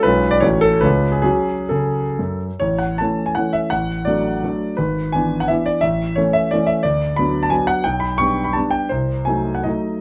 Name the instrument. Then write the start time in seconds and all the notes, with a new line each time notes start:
grand piano
0.03 B1 G#3 C#4 F4 B4
0.31 D5
0.40 A1 A3 C#4 F#4 C#5
0.61 A4
0.81 C#2 G#3 C#4 F4 B4
1.12 G#4
1.22 F#3 C#4 F#4 G#4
1.69 C#3 A4
2.19 F#2
2.60 A1 C#5
2.78 F#5
2.98 E3 A3 C#4 A5
3.26 G#5
3.35 E3 A3 C#4 F#5
3.53 E5
3.70 A1 F#5
4.05 F#3 A3 D4 D5
4.44 F#3 A3 D4
4.77 G#1 B4
5.12 E3 B3 D4 G#5
5.40 F#5
5.48 E3 B3 D4 E5
5.66 D5
5.81 A1 E5
6.16 E3 A3 C#4 C#5
6.33 E5
6.51 E3 A3 C#4 D5
6.67 E5
6.83 D2 D5
7.16 F#3 B3 D4 B5
7.43 A5
7.50 F#3 B3 D4 G#5
7.67 F#5
7.84 B1 G5
8.00 B5
8.18 G3 B3 D4 C#6
8.44 B5
8.53 G3 B3 D4 A5
8.71 G5
8.89 C2 C5
9.25 F#3 A3 D#4 G#5
9.55 F#5
9.64 F#3 A3 D#4 D#5